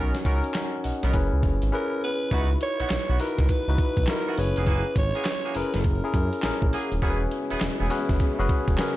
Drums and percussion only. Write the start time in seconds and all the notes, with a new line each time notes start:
0.15 snare
0.25 kick, closed hi-hat
0.44 closed hi-hat
0.54 snare, clap, closed hi-hat
0.84 open hi-hat
1.03 snare, closed hi-hat
1.13 kick, closed hi-hat
1.43 kick, closed hi-hat
1.62 closed hi-hat
2.31 kick, closed hi-hat
2.61 closed hi-hat
2.80 closed hi-hat
2.90 snare, clap, closed hi-hat
3.20 open hi-hat
3.38 kick, snare, closed hi-hat
3.49 kick, closed hi-hat
3.78 kick, closed hi-hat
3.97 kick, closed hi-hat
4.07 snare, clap, closed hi-hat
4.37 open hi-hat
4.56 closed hi-hat
4.66 kick, closed hi-hat
4.96 kick, closed hi-hat
5.15 closed hi-hat
5.25 snare, clap, closed hi-hat
5.55 open hi-hat
5.74 snare, closed hi-hat
5.84 kick, closed hi-hat
6.14 kick, closed hi-hat
6.33 closed hi-hat
6.42 snare, clap, closed hi-hat
6.62 kick
6.73 open hi-hat
6.92 closed hi-hat
7.02 kick, closed hi-hat
7.31 closed hi-hat
7.50 closed hi-hat
7.60 snare, clap, closed hi-hat
7.90 open hi-hat
8.09 kick, snare, closed hi-hat
8.20 kick, closed hi-hat
8.49 kick, closed hi-hat
8.68 kick, closed hi-hat
8.78 snare, clap, closed hi-hat